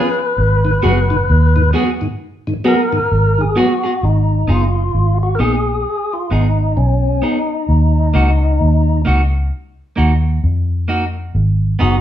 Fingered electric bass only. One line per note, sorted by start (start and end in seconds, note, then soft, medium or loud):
0.38 0.81 G#1 loud
0.84 1.27 F#1 medium
1.30 1.72 D#2 medium
3.12 3.55 G#1 medium
4.03 4.46 G#1 medium
4.49 4.92 F#1 medium
4.95 5.38 G#1 medium
5.40 5.83 A#1 medium
6.31 6.75 G#1 medium
6.77 7.20 B1 medium
7.69 8.12 D#2 loud
8.15 8.58 C#2 medium
8.61 9.04 D#2 medium
9.07 9.50 C#2 medium
9.98 10.41 D#2 medium
10.44 11.31 F2 medium
11.35 11.78 G#1 loud
11.81 12.01 F#1 medium